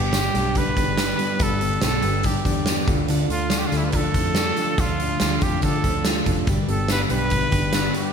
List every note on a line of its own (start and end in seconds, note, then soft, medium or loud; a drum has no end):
0.00 0.28 G1 medium
0.00 1.39 G2 medium
0.00 0.13 G3 soft
0.00 0.12 B3 soft
0.00 0.12 D4 soft
0.00 0.13 G4 medium
0.00 0.59 G4 loud
0.13 0.34 G2 medium
0.13 0.34 D3 medium
0.13 0.35 G3 medium
0.13 0.34 B3 medium
0.13 0.33 D4 medium
0.13 0.32 G4 medium
0.13 snare loud
0.13 closed hi-hat medium
0.13 tambourine loud
0.33 0.70 B1 medium
0.33 0.54 G3 soft
0.33 0.45 A3 medium
0.33 0.54 B3 soft
0.33 0.55 D4 medium
0.33 0.55 G4 medium
0.33 snare soft
0.33 closed hi-hat medium
0.33 tambourine medium
0.45 0.97 B3 medium
0.55 2.24 D3 medium
0.55 0.76 G3 medium
0.55 0.76 B3 medium
0.55 0.76 D4 medium
0.55 0.75 G4 medium
0.55 1.44 B4 loud
0.55 kick medium
0.55 closed hi-hat medium
0.55 tambourine soft
0.76 1.12 G1 medium
0.76 0.96 G3 soft
0.76 0.97 B3 soft
0.76 0.97 D4 medium
0.76 0.97 G4 soft
0.76 kick medium
0.76 closed hi-hat medium
0.76 tambourine soft
0.97 1.19 G2 medium
0.97 1.19 D3 medium
0.97 1.19 G3 medium
0.97 1.19 B3 medium
0.97 1.18 D4 medium
0.97 1.17 G4 medium
0.97 snare loud
0.97 closed hi-hat loud
0.97 tambourine medium
1.18 1.38 G3 soft
1.18 1.38 B3 medium
1.18 1.39 D4 medium
1.18 1.39 G4 medium
1.18 closed hi-hat medium
1.18 tambourine soft
1.39 1.76 G1 loud
1.39 1.60 G2 medium
1.39 1.61 D3 medium
1.39 1.61 G3 medium
1.39 1.61 B3 medium
1.39 1.60 D4 medium
1.39 1.59 G4 medium
1.39 kick loud
1.39 closed hi-hat medium
1.39 tambourine medium
1.43 1.83 A4 loud
1.60 1.80 G3 soft
1.60 1.81 B3 medium
1.60 1.81 D4 medium
1.60 1.82 G4 medium
1.60 closed hi-hat medium
1.60 tambourine soft
1.81 2.00 B1 loud
1.81 2.03 G2 medium
1.81 2.03 D3 medium
1.81 2.03 G3 medium
1.81 2.03 B3 medium
1.81 1.93 C4 medium
1.81 2.02 D4 medium
1.81 2.01 G4 medium
1.81 2.28 A4 loud
1.81 snare loud
1.81 closed hi-hat medium
1.81 tambourine medium
1.93 2.44 D4 medium
2.02 2.22 G1 medium
2.02 2.23 G3 soft
2.02 2.24 B3 medium
2.02 2.24 D4 medium
2.02 2.24 G4 medium
2.02 closed hi-hat medium
2.02 tambourine medium
2.23 2.42 G2 medium
2.23 2.87 D3 medium
2.23 2.45 G3 medium
2.23 2.44 B3 medium
2.23 2.43 D4 medium
2.23 2.42 G4 medium
2.23 2.89 G4 medium
2.23 kick medium
2.23 closed hi-hat medium
2.43 2.81 E2 medium
2.43 2.66 G3 soft
2.43 2.66 B3 medium
2.43 2.66 D4 medium
2.43 2.66 G4 medium
2.43 kick medium
2.43 closed hi-hat medium
2.43 tambourine medium
2.66 2.88 G2 medium
2.66 2.88 D3 medium
2.66 2.88 G3 medium
2.66 2.88 B3 medium
2.66 2.88 D4 medium
2.66 2.87 G4 medium
2.66 snare loud
2.66 closed hi-hat medium
2.66 tambourine medium
2.88 3.24 D2 loud
2.88 3.08 D3 medium
2.88 3.09 D4 medium
2.88 3.09 F4 medium
2.88 3.09 A4 medium
2.88 kick loud
2.88 closed hi-hat medium
2.88 tambourine soft
3.08 3.30 D3 loud
3.08 3.30 F3 medium
3.08 3.31 D4 medium
3.08 3.30 F4 medium
3.08 3.29 A4 loud
3.08 closed hi-hat medium
3.08 tambourine medium
3.29 3.65 D2 medium
3.29 3.71 A3 medium
3.29 3.51 D4 soft
3.29 3.52 F4 soft
3.29 3.60 F4 loud
3.29 3.51 A4 medium
3.29 closed hi-hat medium
3.29 tambourine soft
3.50 3.73 D3 medium
3.50 3.73 F3 medium
3.50 3.73 D4 medium
3.50 3.72 F4 medium
3.50 3.71 A4 medium
3.50 snare loud
3.50 closed hi-hat medium
3.50 tambourine medium
3.58 3.68 G4 medium
3.67 3.78 F4 medium
3.72 4.08 D2 medium
3.72 4.35 A3 medium
3.72 3.92 D4 soft
3.72 3.94 F4 medium
3.72 3.94 A4 medium
3.72 snare soft
3.72 closed hi-hat medium
3.72 tambourine soft
3.77 3.86 E4 medium
3.85 3.89 F4 medium
3.85 3.97 B4 medium
3.92 4.15 F3 medium
3.92 4.15 D4 medium
3.92 4.14 F4 medium
3.92 4.13 A4 medium
3.92 4.81 A4 loud
3.92 kick medium
3.92 closed hi-hat medium
4.14 4.51 F2 medium
4.14 4.36 D4 soft
4.14 4.36 F4 medium
4.14 4.36 A4 medium
4.14 kick medium
4.14 closed hi-hat medium
4.14 tambourine soft
4.35 4.57 D3 medium
4.35 4.58 F3 medium
4.35 4.99 A3 medium
4.35 4.58 D4 medium
4.35 4.57 F4 medium
4.35 4.56 A4 medium
4.35 snare loud
4.35 closed hi-hat medium
4.35 tambourine loud
4.56 5.62 F3 medium
4.56 4.78 D4 medium
4.56 4.79 F4 medium
4.56 4.78 A4 medium
4.56 closed hi-hat medium
4.56 tambourine medium
4.78 5.14 D2 loud
4.78 5.00 D3 medium
4.78 5.00 F3 medium
4.78 5.00 D4 medium
4.78 5.44 F4 loud
4.78 5.00 F4 medium
4.78 4.99 A4 medium
4.78 kick loud
4.78 closed hi-hat medium
4.78 tambourine medium
5.00 5.41 A3 medium
5.00 5.21 D4 soft
5.00 5.21 F4 medium
5.00 5.21 A4 medium
5.00 closed hi-hat medium
5.00 tambourine soft
5.20 5.39 D2 loud
5.20 5.42 D3 medium
5.20 5.42 F3 medium
5.20 5.43 D4 medium
5.20 5.42 F4 medium
5.20 5.41 A4 medium
5.20 snare loud
5.20 closed hi-hat medium
5.20 tambourine medium
5.41 5.60 F2 medium
5.41 6.05 A3 medium
5.41 5.63 D4 soft
5.41 5.64 F4 medium
5.41 5.63 G4 medium
5.41 5.63 A4 medium
5.41 kick loud
5.41 closed hi-hat medium
5.41 tambourine soft
5.62 5.81 D3 loud
5.62 5.84 F3 medium
5.62 5.85 D4 medium
5.62 5.85 F4 medium
5.62 6.23 A4 medium
5.62 5.83 A4 medium
5.62 kick medium
5.62 closed hi-hat medium
5.84 6.20 D2 medium
5.84 5.95 C4 medium
5.84 6.05 D4 soft
5.84 6.06 F4 soft
5.84 6.05 A4 medium
5.84 kick medium
5.84 closed hi-hat medium
5.84 tambourine soft
5.95 6.52 D4 medium
6.05 6.26 D3 medium
6.05 6.27 F3 medium
6.05 6.52 A3 medium
6.05 6.26 D4 medium
6.05 6.26 F4 medium
6.05 6.25 A4 medium
6.05 snare loud
6.05 closed hi-hat medium
6.05 tambourine medium
6.26 6.44 F1 medium
6.26 6.52 F3 medium
6.26 6.47 D4 medium
6.26 6.48 F4 medium
6.26 6.47 A4 medium
6.26 kick medium
6.26 closed hi-hat medium
6.26 tambourine soft
6.47 6.65 G1 loud
6.47 6.69 G2 loud
6.47 6.69 D3 medium
6.47 6.69 G3 medium
6.47 6.69 B3 medium
6.47 6.68 D4 loud
6.47 6.68 G4 loud
6.47 kick loud
6.47 closed hi-hat medium
6.47 tambourine medium
6.68 7.04 G1 medium
6.68 6.89 G3 soft
6.68 6.89 B3 medium
6.68 6.89 D4 soft
6.68 6.90 G4 medium
6.68 6.89 A4 medium
6.68 closed hi-hat medium
6.88 7.10 G2 medium
6.88 7.11 D3 medium
6.88 7.11 G3 medium
6.88 7.11 B3 medium
6.88 7.10 D4 medium
6.88 7.09 G4 medium
6.88 7.01 B4 loud
6.88 snare loud
6.88 closed hi-hat medium
6.88 tambourine medium
7.09 7.46 B1 medium
7.09 7.29 G3 soft
7.09 7.31 B3 medium
7.09 7.31 D4 medium
7.09 7.32 G4 medium
7.09 7.91 B4 loud
7.09 closed hi-hat medium
7.09 tambourine medium
7.30 8.13 D3 medium
7.30 7.52 G3 medium
7.30 7.51 B3 medium
7.30 7.51 D4 medium
7.30 7.50 G4 medium
7.30 kick medium
7.30 closed hi-hat medium
7.30 tambourine soft
7.51 7.88 G1 medium
7.51 7.72 G3 soft
7.51 7.72 B3 soft
7.51 7.72 D4 soft
7.51 7.73 G4 medium
7.51 kick medium
7.51 closed hi-hat medium
7.51 tambourine soft
7.73 7.94 G2 medium
7.73 7.95 D3 medium
7.73 7.95 G3 loud
7.73 7.94 B3 loud
7.73 7.94 D4 medium
7.73 7.93 G4 loud
7.73 snare loud
7.73 closed hi-hat medium
7.73 tambourine medium
7.94 8.13 G3 soft
7.94 8.13 B3 soft
7.94 8.13 D4 medium
7.94 8.13 G4 medium
7.94 closed hi-hat medium
7.94 tambourine medium